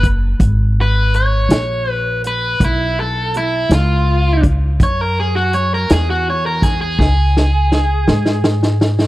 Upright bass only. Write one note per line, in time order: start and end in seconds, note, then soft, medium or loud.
0.00 0.37 F#1 medium
0.39 1.47 G#1 medium
1.49 2.56 A#1 medium
2.60 3.67 B1 medium
3.69 4.76 C#2 medium
4.80 5.86 F#2 medium
5.91 6.96 E2 medium
6.99 8.06 C#2 medium
8.08 9.07 G#2 medium